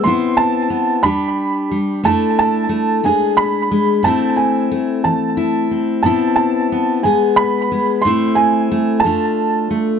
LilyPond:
<<
  \new Staff \with { instrumentName = "Felt piano" } { \time 6/8 \key a \minor \tempo 4. = 60 c'''8 a''4 b''4 r8 | a''8 a''4 gis''8 b''4 | a''8 gis''4 a''4 r8 | a''8 a''4 gis''8 b''4 |
c'''8 gis''4 a''4 r8 | }
  \new Staff \with { instrumentName = "Steel-string acoustic guitar" } { \time 6/8 \key a \minor << { <b c' e'>4 b8 <g d' g'>4 g8 | <a d' e'>4 a8 <gis d' gis'>4 gis8 | <a c' e'>4 a4 e'8 c'8 | <b c' e'>4 b8 <gis b gis'>4 gis8 |
<a c' e'>4 a8 <a d' f'>4 a8 | } \\ { a,4 r8 e,4 r8 | f,4 r8 e,4 r8 | a,4 r8 e4 r8 | a,4 r8 gis,4 r8 |
a,4 r8 f,4 r8 | } >> }
>>